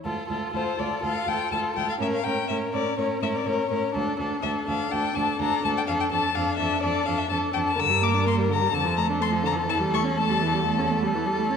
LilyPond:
<<
  \new Staff \with { instrumentName = "Violin" } { \time 4/4 \key d \minor \tempo 4 = 124 r4 c''8 d''8 f''8 g''8 a''8 g''16 f''16 | e''16 f''16 g''8 e''8 d''8 cis''8 e''16 d''16 cis''4 | r4 e''8 f''8 g''8 a''8 bes''8 a''16 g''16 | f''16 g''16 a''8 f''8 e''8 d''8 f''16 e''16 a''8 g''16 a''16 |
e'''8 d'''8 c'''8 bes''8 a''8 bes''8 c'''8 bes''8 | a''8 cis'''8 a''4. r4. | }
  \new Staff \with { instrumentName = "Violin" } { \time 4/4 \key d \minor a'8 a'8 a'8 a'8 a'8 a'8 a'8 a'8 | bes'8 bes'8 bes'8 bes'8 bes'8 bes'8 bes'8 bes'8 | a'8 a'8 a'8 a'8 a'8 a'8 a'8 a'8 | a'8 a'8 a'8 a'8 a'8 a'8 a'8 a'8 |
bes'2 a'2~ | a'1 | }
  \new Staff \with { instrumentName = "Viola" } { \time 4/4 \key d \minor f'8 f'8 f'8 f'8 f'8 f'8 f'8 f'8 | cis'8 cis'8 cis'8 cis'8 cis'8 cis'8 cis'8 cis'8 | d'8 d'8 d'8 d'8 d'8 d'8 d'8 d'8 | d'8 d'8 d'8 d'8 d'8 d'8 d'8 d'8 |
d16 g16 bes16 d'16 bes16 g16 d16 g16 d16 f16 a16 d'16 a16 f16 d16 f16 | e16 g16 a16 cis'16 a16 g16 e16 g16 a16 cis'16 a16 g16 e16 g16 a16 cis'16 | }
  \new Staff \with { instrumentName = "Cello" } { \clef bass \time 4/4 \key d \minor d,8 d,8 d,8 d,8 d,8 d,8 d,8 d,8 | a,8 a,8 a,8 a,8 a,8 a,8 a,8 a,8 | d,8 d,8 d,8 d,8 d,8 d,8 d,8 d,8 | f,8 f,8 f,8 f,8 f,8 f,8 f,8 f,8 |
g,2 f,2 | e,1 | }
>>